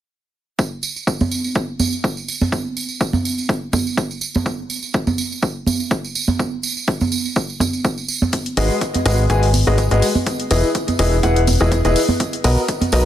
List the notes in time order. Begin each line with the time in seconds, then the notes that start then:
0.59 kick, tambourine
0.83 tambourine
0.96 tambourine
1.07 kick, tambourine
1.21 tambourine, high conga
1.31 tambourine
1.44 tambourine
1.55 kick, tambourine
1.79 tambourine, high conga
1.93 tambourine
2.04 kick, tambourine
2.17 tambourine
2.28 tambourine
2.41 tambourine, high conga
2.52 kick, tambourine
2.77 tambourine
2.89 tambourine
3.01 kick, tambourine
3.13 tambourine, high conga
3.25 tambourine
3.38 tambourine
3.49 kick, tambourine
3.73 kick, tambourine, high conga
3.87 tambourine
3.97 kick, tambourine
4.11 tambourine
4.21 tambourine
4.34 tambourine, high conga
4.46 kick, tambourine
4.70 tambourine
4.83 tambourine
4.94 kick, tambourine
5.07 tambourine, high conga
5.18 tambourine
5.32 tambourine
5.42 kick, tambourine
5.66 tambourine, high conga
5.80 tambourine
5.91 kick, tambourine
6.04 tambourine
6.15 tambourine
6.28 tambourine, high conga
6.39 kick, tambourine
6.63 tambourine
6.77 tambourine
6.87 kick, tambourine
7.01 tambourine, high conga
7.12 tambourine
7.25 tambourine
7.36 kick, tambourine
7.50 tambourine
7.60 kick, tambourine, high conga
7.73 tambourine
7.84 kick, tambourine
7.98 tambourine
8.08 tambourine
8.22 tambourine, high conga
8.33 kick, closed hi-hat, tambourine
8.46 closed hi-hat
8.57 G#1 G#3 F#4 G#4 B4 D#5, open hi-hat, tambourine
8.71 tambourine
8.81 kick, closed hi-hat, tambourine
8.94 closed hi-hat, tambourine, high conga
9.05 G#1 G#3 F#4 G#4 B4 D#5, open hi-hat, tambourine
9.18 tambourine
9.30 G#1 G#3 F#4 G#4 B4 G#5, kick, closed hi-hat, tambourine
9.43 open hi-hat
9.54 open hi-hat, tambourine, high conga
9.67 G#1 G#3 F#4 G#4 B4 D#5, tambourine
9.78 kick, closed hi-hat, tambourine
9.91 G#1 G#3 F#4 G#4 B4 D#5, closed hi-hat, tambourine
10.02 open hi-hat, tambourine
10.15 tambourine, high conga
10.27 kick, closed hi-hat, tambourine
10.40 closed hi-hat
10.51 E1 E3 E4 G#4 B4 D#5, open hi-hat, tambourine
10.63 tambourine
10.75 kick, closed hi-hat, tambourine
10.88 closed hi-hat, tambourine, high conga
10.99 E1 E3 E4 G#4 B4 D#5, open hi-hat, tambourine
11.13 tambourine
11.23 E1 E3 E4 G#4 B4 F#5, kick, closed hi-hat, tambourine
11.36 closed hi-hat
11.47 kick, open hi-hat, tambourine, high conga
11.60 E1 E3 E4 G#4 B4 D#5, tambourine
11.72 kick, closed hi-hat, tambourine
11.85 E1 E3 E4 G#4 B4 D#5, closed hi-hat, tambourine
11.96 open hi-hat, tambourine
12.09 tambourine, high conga
12.20 kick, closed hi-hat, tambourine
12.33 closed hi-hat
12.44 B1 B3 F#4 A#4 B4 D#5, open hi-hat, tambourine
12.57 tambourine
12.68 kick, closed hi-hat, tambourine
12.81 closed hi-hat, tambourine, high conga
12.92 B1 B3 F#4 A#4 B4 D#5, open hi-hat, tambourine